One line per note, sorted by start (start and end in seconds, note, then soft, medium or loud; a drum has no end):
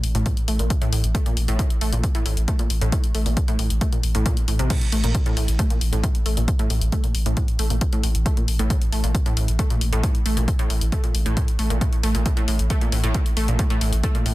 0.04 0.14 A1 loud
0.04 open hi-hat loud
0.15 0.26 A1 medium
0.15 0.24 A2 loud
0.15 closed hi-hat soft
0.26 0.32 A2 medium
0.26 kick loud
0.26 closed hi-hat medium
0.37 closed hi-hat medium
0.48 0.59 A1 loud
0.48 0.58 A3 medium
0.48 open hi-hat loud
0.59 0.70 A1 medium
0.59 0.69 A#2 medium
0.59 closed hi-hat soft
0.70 kick loud
0.70 closed hi-hat medium
0.82 0.91 A2 loud
0.82 closed hi-hat soft
0.92 1.03 A1 loud
0.92 0.99 A2 medium
0.92 open hi-hat loud
1.04 1.14 A1 medium
1.04 closed hi-hat soft
1.15 1.24 A3 medium
1.15 kick loud
1.15 closed hi-hat loud
1.26 1.35 A#2 medium
1.26 closed hi-hat soft
1.37 1.47 A1 loud
1.37 open hi-hat loud
1.48 1.59 A1 medium
1.48 1.58 A2 loud
1.48 closed hi-hat medium
1.59 kick loud
1.59 closed hi-hat medium
1.70 closed hi-hat soft
1.81 1.92 A1 loud
1.81 1.91 A3 medium
1.81 open hi-hat medium
1.93 2.03 A1 medium
1.93 2.02 A#2 medium
1.93 closed hi-hat medium
2.04 kick loud
2.04 closed hi-hat medium
2.15 2.24 A2 loud
2.15 closed hi-hat soft
2.26 2.36 A1 loud
2.26 2.32 A2 medium
2.26 open hi-hat loud
2.37 2.48 A1 medium
2.37 closed hi-hat medium
2.48 2.58 A3 medium
2.48 kick loud
2.48 closed hi-hat loud
2.59 2.69 A#2 medium
2.59 closed hi-hat medium
2.70 2.81 A1 loud
2.70 open hi-hat loud
2.81 2.92 A1 medium
2.81 2.91 A2 loud
2.81 closed hi-hat soft
2.92 2.99 A2 medium
2.92 kick loud
2.92 closed hi-hat medium
3.04 closed hi-hat soft
3.15 3.25 A1 loud
3.15 3.24 A3 medium
3.15 open hi-hat loud
3.26 3.37 A1 medium
3.26 3.35 A#2 medium
3.26 open hi-hat medium
3.37 kick loud
3.37 closed hi-hat medium
3.48 3.58 A2 loud
3.48 closed hi-hat soft
3.59 3.70 A1 loud
3.59 3.66 A2 medium
3.59 open hi-hat loud
3.70 3.81 A1 medium
3.70 closed hi-hat medium
3.81 3.91 A3 medium
3.81 kick loud
3.81 closed hi-hat loud
3.93 4.02 A#2 medium
3.93 closed hi-hat medium
4.03 4.14 A1 loud
4.03 open hi-hat loud
4.15 4.26 A1 medium
4.15 4.21 A2 loud
4.15 closed hi-hat medium
4.26 4.32 A#2 loud
4.26 kick loud
4.26 closed hi-hat loud
4.37 closed hi-hat medium
4.48 4.59 A1 loud
4.48 4.58 A2 medium
4.48 open hi-hat loud
4.59 4.70 A1 medium
4.59 4.66 C3 loud
4.59 closed hi-hat medium
4.70 4.77 A2 medium
4.70 kick loud
4.70 closed hi-hat loud
4.70 crash medium
4.81 closed hi-hat medium
4.92 5.03 A1 loud
4.92 5.02 A3 medium
4.92 open hi-hat loud
5.04 5.14 A1 medium
5.04 5.13 A#2 medium
5.04 closed hi-hat medium
5.15 kick loud
5.15 closed hi-hat loud
5.26 5.35 A2 loud
5.26 closed hi-hat soft
5.37 5.48 A1 loud
5.37 5.43 A2 medium
5.37 open hi-hat loud
5.48 5.59 A1 medium
5.48 closed hi-hat medium
5.59 5.69 A3 medium
5.59 kick loud
5.59 closed hi-hat loud
5.70 5.80 A#2 medium
5.70 closed hi-hat medium
5.81 5.92 A1 medium
5.81 open hi-hat loud
5.93 6.03 A1 medium
5.93 6.02 A2 loud
5.93 closed hi-hat medium
6.04 6.10 A2 medium
6.04 kick loud
6.04 closed hi-hat loud
6.15 closed hi-hat medium
6.26 6.37 A1 loud
6.26 6.36 A3 medium
6.26 open hi-hat loud
6.37 6.48 A1 medium
6.37 6.46 A#2 medium
6.37 closed hi-hat medium
6.48 kick loud
6.48 closed hi-hat medium
6.59 6.69 A2 loud
6.59 closed hi-hat soft
6.70 6.81 A1 medium
6.70 6.77 A2 medium
6.70 open hi-hat loud
6.82 6.92 A1 medium
6.82 closed hi-hat medium
6.92 7.02 A3 medium
6.92 kick loud
6.92 closed hi-hat loud
7.04 7.13 A#2 medium
7.04 closed hi-hat medium
7.15 7.25 A1 loud
7.15 open hi-hat loud
7.26 7.37 A1 medium
7.26 7.35 A2 loud
7.26 closed hi-hat medium
7.37 7.43 A2 medium
7.37 kick loud
7.37 closed hi-hat loud
7.48 closed hi-hat medium
7.59 7.70 A1 loud
7.59 7.69 A3 medium
7.59 open hi-hat loud
7.70 7.81 A1 medium
7.70 7.80 A#2 medium
7.70 closed hi-hat medium
7.81 kick loud
7.81 closed hi-hat loud
7.93 8.02 A2 loud
7.93 closed hi-hat medium
8.04 8.14 A1 medium
8.04 8.10 A2 medium
8.04 open hi-hat loud
8.15 8.26 A1 medium
8.15 closed hi-hat medium
8.26 8.36 A3 medium
8.26 kick loud
8.26 closed hi-hat medium
8.37 8.46 A#2 medium
8.37 closed hi-hat medium
8.48 8.59 A1 loud
8.48 open hi-hat loud
8.59 8.70 A1 medium
8.59 8.69 A2 loud
8.59 closed hi-hat medium
8.70 8.77 A2 medium
8.70 kick loud
8.70 closed hi-hat medium
8.82 closed hi-hat medium
8.92 9.03 A1 loud
8.92 9.02 A3 medium
8.92 open hi-hat loud
9.04 9.14 A1 medium
9.04 9.13 A#2 medium
9.04 closed hi-hat medium
9.15 kick loud
9.15 closed hi-hat loud
9.26 9.35 A2 medium
9.26 closed hi-hat medium
9.37 9.48 A1 loud
9.37 9.43 A2 medium
9.37 open hi-hat loud
9.48 9.59 A1 medium
9.48 closed hi-hat medium
9.59 9.69 A3 medium
9.59 kick loud
9.59 closed hi-hat loud
9.70 9.80 A#2 medium
9.70 closed hi-hat medium
9.81 9.92 A1 loud
9.81 open hi-hat loud
9.93 10.03 A1 medium
9.93 10.02 A2 loud
9.93 closed hi-hat soft
10.03 kick loud
10.03 closed hi-hat medium
10.15 closed hi-hat soft
10.26 10.36 A1 loud
10.26 10.35 A3 medium
10.26 open hi-hat loud
10.37 10.48 A1 medium
10.37 10.46 A#2 medium
10.37 closed hi-hat medium
10.48 kick loud
10.48 closed hi-hat medium
10.59 10.69 A2 loud
10.59 closed hi-hat soft
10.70 10.81 A1 medium
10.70 10.77 A2 medium
10.70 open hi-hat loud
10.81 10.92 A1 medium
10.81 closed hi-hat medium
10.92 11.02 A3 medium
10.92 kick loud
10.92 closed hi-hat medium
11.04 11.13 A#2 medium
11.04 closed hi-hat medium
11.15 11.25 A1 loud
11.15 open hi-hat loud
11.26 11.37 A1 medium
11.26 11.35 A2 loud
11.26 closed hi-hat medium
11.37 11.43 A2 medium
11.37 kick loud
11.37 closed hi-hat medium
11.48 closed hi-hat medium
11.59 11.70 A1 medium
11.59 11.69 A3 medium
11.59 open hi-hat loud
11.70 11.81 A1 medium
11.70 11.80 A#2 medium
11.70 closed hi-hat soft
11.81 11.88 A2 medium
11.81 kick loud
11.81 closed hi-hat medium
11.93 closed hi-hat soft
12.03 12.14 A1 loud
12.03 12.13 A3 medium
12.03 open hi-hat loud
12.15 12.26 A1 medium
12.15 12.24 A#2 medium
12.15 closed hi-hat medium
12.26 12.32 A2 medium
12.26 kick loud
12.26 closed hi-hat medium
12.37 12.46 A2 medium
12.37 closed hi-hat soft
12.48 12.59 A1 medium
12.48 12.54 A2 medium
12.48 open hi-hat loud
12.59 12.70 A1 medium
12.59 closed hi-hat soft
12.70 12.80 A3 medium
12.70 kick loud
12.70 closed hi-hat loud
12.81 12.91 A#2 medium
12.81 closed hi-hat soft
12.92 13.03 A1 loud
12.92 12.99 A2 medium
12.92 open hi-hat loud
13.04 13.14 A1 medium
13.04 13.13 A2 loud
13.04 closed hi-hat soft
13.14 13.21 A2 medium
13.14 kick loud
13.14 closed hi-hat medium
13.26 closed hi-hat medium
13.37 13.48 A1 loud
13.37 13.47 A3 medium
13.37 open hi-hat loud
13.48 13.59 A1 medium
13.48 13.58 A#2 medium
13.48 closed hi-hat medium
13.59 13.66 A2 medium
13.59 kick loud
13.59 closed hi-hat medium
13.70 13.80 A2 loud
13.70 closed hi-hat soft
13.81 13.92 A1 loud
13.81 13.88 A2 medium
13.81 open hi-hat loud
13.93 14.03 A1 medium
13.93 closed hi-hat soft
14.04 14.13 A3 medium
14.04 kick loud
14.04 closed hi-hat medium
14.15 14.24 A#2 medium
14.15 closed hi-hat soft
14.26 14.34 A1 loud
14.26 14.32 A2 medium
14.26 open hi-hat loud